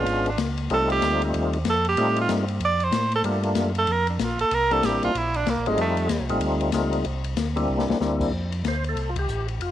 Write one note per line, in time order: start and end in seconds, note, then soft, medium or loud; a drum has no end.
0.00 0.30 G#3 medium
0.00 0.31 B3 medium
0.00 0.31 C#4 medium
0.00 0.31 D4 medium
0.00 0.27 F4 loud
0.00 0.31 F4 medium
0.05 0.37 G#1 medium
0.05 ride medium
0.26 0.39 D4 medium
0.26 ride soft
0.38 0.69 C#2 medium
0.38 snare medium
0.38 hi-hat pedal medium
0.38 ride medium
0.57 ride soft
0.70 1.01 C2 medium
0.70 1.58 G3 medium
0.70 1.58 A3 medium
0.70 1.58 C4 medium
0.70 1.59 D#4 medium
0.70 1.59 F4 medium
0.70 0.90 A4 loud
0.70 ride medium
0.90 1.20 G4 loud
0.90 ride medium
1.02 1.33 D2 medium
1.02 snare medium
1.02 hi-hat pedal medium
1.02 ride medium
1.22 1.30 D#4 medium
1.22 ride soft
1.34 1.65 D#2 medium
1.34 ride medium
1.53 ride soft
1.65 1.96 F2 medium
1.65 snare medium
1.65 hi-hat pedal medium
1.65 ride medium
1.70 1.86 A4 loud
1.85 ride soft
1.89 2.17 G4 medium
1.97 2.28 A2 medium
1.97 2.45 G3 medium
1.97 2.45 A3 medium
1.97 2.45 C4 medium
1.97 2.45 D#4 medium
1.97 2.45 F4 medium
1.97 ride medium
2.16 ride medium
2.21 2.31 F4 medium
2.29 2.60 G2 medium
2.29 snare medium
2.29 hi-hat pedal medium
2.29 ride medium
2.48 ride soft
2.60 2.91 F2 medium
2.60 ride medium
2.65 2.86 D5 loud
2.80 3.14 C5 loud
2.80 ride soft
2.92 3.23 A2 medium
2.92 snare medium
2.92 hi-hat pedal medium
2.92 ride medium
3.12 ride soft
3.16 3.22 A4 loud
3.24 3.55 G2 medium
3.24 3.72 G3 medium
3.24 3.72 A3 medium
3.24 3.72 A#3 medium
3.24 3.72 D4 medium
3.24 3.72 F4 medium
3.24 ride medium
3.43 ride medium
3.55 3.87 F#2 medium
3.55 snare medium
3.55 hi-hat pedal medium
3.55 ride medium
3.75 3.93 A4 medium
3.75 ride soft
3.87 4.18 F2 medium
3.87 ride medium
3.92 4.09 A#4 loud
4.07 4.25 D4 medium
4.07 ride soft
4.19 4.37 A#1 medium
4.19 snare medium
4.19 hi-hat pedal medium
4.19 ride medium
4.23 4.40 F4 medium
4.38 4.45 A#1 soft
4.38 4.56 A4 loud
4.38 ride soft
4.51 4.82 C2 medium
4.51 4.74 A#4 loud
4.51 ride medium
4.71 5.12 G3 medium
4.71 5.13 A#3 medium
4.71 5.12 C4 medium
4.71 5.13 D4 medium
4.71 5.13 E4 medium
4.71 4.87 A4 loud
4.71 ride soft
4.83 5.01 A1 medium
4.83 5.04 G4 medium
4.83 snare medium
4.83 hi-hat pedal medium
4.83 ride medium
5.03 5.09 A1 soft
5.03 5.19 F4 medium
5.03 ride soft
5.15 5.45 A#1 medium
5.15 5.37 E4 medium
5.15 ride medium
5.34 5.51 D4 medium
5.34 ride soft
5.46 5.57 C2 loud
5.46 5.69 A#3 medium
5.46 snare medium
5.46 hi-hat pedal medium
5.46 ride medium
5.58 5.68 A#1 medium
5.66 5.77 G1 medium
5.66 6.08 G3 medium
5.66 5.79 G#3 medium
5.66 6.08 A3 medium
5.66 6.08 C4 medium
5.66 6.08 D#4 medium
5.66 6.08 F4 medium
5.66 ride soft
5.78 6.09 F2 medium
5.78 6.28 A3 medium
5.78 ride medium
5.97 ride medium
6.09 6.20 D#2 medium
6.09 snare medium
6.09 hi-hat pedal medium
6.09 ride medium
6.21 6.31 C2 medium
6.29 6.41 A1 medium
6.29 6.71 G3 medium
6.29 6.71 A3 medium
6.29 6.71 C4 medium
6.29 6.71 D#4 medium
6.29 6.72 F4 medium
6.29 ride medium
6.40 6.72 D2 medium
6.40 ride medium
6.61 ride medium
6.72 7.04 C#2 medium
6.72 7.05 G3 medium
6.72 7.06 A3 medium
6.72 7.06 C4 medium
6.72 7.06 D#4 medium
6.72 7.06 F4 medium
6.72 snare medium
6.72 hi-hat pedal medium
6.72 ride medium
6.93 ride medium
7.05 7.36 C2 medium
7.05 ride medium
7.24 ride medium
7.36 7.68 D2 medium
7.36 snare medium
7.36 hi-hat pedal medium
7.36 ride medium
7.56 7.98 G3 medium
7.56 7.98 A#3 medium
7.56 7.98 C4 medium
7.56 7.98 D4 medium
7.56 7.98 E4 medium
7.56 ride soft
7.68 7.87 C2 loud
7.79 snare medium
7.88 7.94 C2 soft
7.88 snare medium
8.00 8.31 D2 medium
8.00 8.32 G3 medium
8.00 8.33 A#3 medium
8.00 8.33 C4 medium
8.00 8.33 D4 medium
8.00 8.33 E4 medium
8.00 snare medium
8.00 hi-hat pedal medium
8.20 kick medium
8.20 crash medium
8.32 8.63 F2 medium
8.52 ride soft
8.64 8.95 D2 medium
8.64 snare medium
8.64 hi-hat pedal medium
8.64 ride medium
8.68 8.85 C5 loud
8.84 ride soft
8.89 9.10 A4 medium
8.96 9.27 C2 medium
8.96 ride medium
9.09 9.17 F4 medium
9.16 9.47 G4 loud
9.16 kick medium
9.16 ride medium
9.28 9.59 A1 medium
9.28 hi-hat pedal medium
9.48 ride soft
9.60 9.71 F1 medium
9.60 9.71 F4 medium
9.60 ride medium